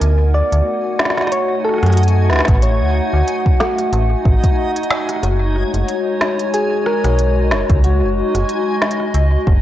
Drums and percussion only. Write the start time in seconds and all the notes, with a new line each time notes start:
0.01 closed hi-hat
0.34 cross-stick
0.52 closed hi-hat
0.99 snare
1.05 snare
1.10 snare
1.18 cross-stick, snare
1.21 snare
1.27 snare
1.32 closed hi-hat
1.64 cross-stick
1.69 cross-stick
1.74 cross-stick
1.78 cross-stick
1.83 cross-stick, closed hi-hat
1.86 cross-stick, closed hi-hat
1.90 cross-stick, closed hi-hat
1.93 cross-stick, closed hi-hat
2.03 closed hi-hat
2.08 closed hi-hat
2.30 snare
2.33 snare
2.36 snare
2.39 snare
2.40 snare
2.45 kick, snare, closed hi-hat
2.62 closed hi-hat
3.27 closed hi-hat
3.46 kick
3.60 snare
3.78 cross-stick, closed hi-hat
3.93 closed hi-hat
4.25 kick
4.44 kick, closed hi-hat
4.76 closed hi-hat
4.83 closed hi-hat
4.90 snare
5.09 cross-stick, closed hi-hat
5.16 cross-stick
5.23 cross-stick, closed hi-hat
5.32 cross-stick
5.56 cross-stick
5.74 closed hi-hat
5.88 closed hi-hat
6.21 snare
6.39 closed hi-hat
6.54 closed hi-hat
6.86 cross-stick
7.04 cross-stick, closed hi-hat
7.19 closed hi-hat
7.51 snare
7.70 kick, closed hi-hat
7.84 closed hi-hat
8.35 cross-stick, closed hi-hat
8.49 closed hi-hat
8.82 snare
8.91 closed hi-hat
9.00 cross-stick
9.14 closed hi-hat
9.47 kick